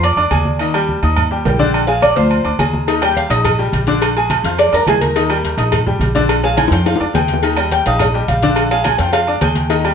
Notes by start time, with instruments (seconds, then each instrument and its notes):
Already playing: upright bass F2, upright piano F3 F4 F5
0.03 cuban tres D5, high conga, low agogo
0.16 upright bass F2, upright piano D4 D5 D6, high conga, low agogo
0.31 upright bass D#2, upright piano G#3 G#4 G#5, high conga, low agogo
0.45 high conga
0.59 upright piano D#3 D#4 D#5, high conga, low agogo
0.74 upright piano G3 G4 G5, high conga, low agogo
0.89 high conga
1.03 upright bass D#2, upright piano D#4 D#5 D#6, high conga, low agogo
1.16 high conga, low conga, low agogo
1.31 upright piano G3 G4 G5, high conga
1.45 upright bass A#1, cuban tres G5, high conga, low timbale, low agogo
1.59 upright piano D3 D4 D5, high conga
1.74 high conga, low agogo
1.87 upright piano G#3 G#4 G#5, cuban tres F5, high conga, low agogo
2.02 cuban tres D5, high conga, low agogo
2.16 upright bass D2, upright piano F3 F4 F5, cuban tres C5
2.31 high conga, low agogo
2.45 upright bass D2, upright piano D4 D5 D6, high conga, low agogo
2.59 upright bass D#2, upright piano G#3 G#4 G#5, cuban tres A#5, high conga, low agogo
2.73 high conga
2.87 upright piano D#3 D#4 D#5, cowbell, high conga, low agogo
3.01 upright piano G3 G4 G5, cuban tres G5, high conga, low agogo
3.16 cuban tres F5, cowbell, high conga
3.30 upright bass A#1, upright piano D#4 D#5 D#6, cuban tres D#5, cowbell, low agogo
3.45 cowbell, high conga, low conga, low agogo
3.59 upright piano G3 G4 G5, high conga
3.72 upright bass A#1, cowbell, high conga, low agogo
3.87 upright piano D3 D4 D5, cowbell, high conga
4.02 cowbell, low agogo
4.16 upright piano G#3 G#4 G#5, high conga, low agogo
4.30 cowbell, high conga, low agogo
4.44 upright bass F2, upright piano F3 F4 F5, cowbell, high conga
4.58 cuban tres D5, cowbell, high conga, low agogo
4.73 upright bass F2, upright piano D4 D5 D6, cuban tres A#4, high conga, low agogo
4.87 upright bass D#2, upright piano G#3 G#4 G#5, cuban tres G#4, cowbell, high conga, low timbale, low agogo
5.01 cuban tres A#4, cowbell, high conga
5.16 upright piano D#3 D#4 D#5, cowbell, low agogo
5.29 upright piano G3 G4 G5, high conga, low agogo
5.44 cowbell, high conga
5.57 upright bass A#1, upright piano D#4 D#5 D#6, cowbell, low agogo
5.72 cowbell, high conga, low conga, low agogo
5.87 upright piano G3 G4 G5, high conga, low conga
5.99 upright bass A#1, cowbell, high conga, low agogo
6.15 upright piano D3 D4 D5, cowbell, high conga
6.29 cowbell, high conga, low agogo
6.43 upright piano G#3 G#4 G#5, cuban tres F5, high conga, low agogo
6.57 cuban tres G#5, cowbell, high bongo, high conga, low agogo
6.68 upright bass F2, upright piano F3, high bongo
6.72 upright piano F4 F5, cuban tres G5, cowbell, high conga
6.86 cuban tres F5, cowbell, high bongo, high conga, low agogo
6.96 high bongo
7.00 upright bass F2, upright piano D4 D5 D6, high conga, low agogo
7.14 upright bass D#2, upright piano G#3 G#4 G#5, cuban tres G5, cowbell, low bongo, high conga, low agogo
7.28 cowbell, high conga
7.33 low bongo
7.43 upright piano D#3 D#4 D#5, cowbell, high conga, low agogo
7.57 upright piano G3 G4 G5, cuban tres D#5, low agogo
7.71 cuban tres G5, cowbell, high conga
7.86 upright bass A#1, upright piano D#4 D#5 D#6, cuban tres F5, cowbell, high conga, low agogo
7.99 cuban tres D#5, cowbell, high conga, low conga, low agogo
8.14 upright piano G3 G4 G5, high conga
8.28 upright bass A#1, cuban tres F5, cowbell, high conga, low agogo
8.43 upright piano D3 D4 D5, cowbell, high conga
8.56 cowbell, low agogo
8.71 upright piano G#3 G#4 G#5, cuban tres F5, high conga, low agogo
8.84 cuban tres G#5, cowbell, high conga, low agogo
8.98 upright bass F2, upright piano F3 F4 F5, cuban tres G5, cowbell, high conga
9.13 cuban tres F5, cowbell, high conga, low agogo
9.27 upright piano D4 D5 D6, high conga, low agogo
9.41 upright bass D#2, upright piano G#3 G#4 G#5, cuban tres G5, cowbell, high conga, low agogo
9.55 cowbell, high conga
9.70 upright piano D#3 D#4 D#5, cowbell, high conga, low agogo
9.84 upright piano G3 G4 G5, high conga, low agogo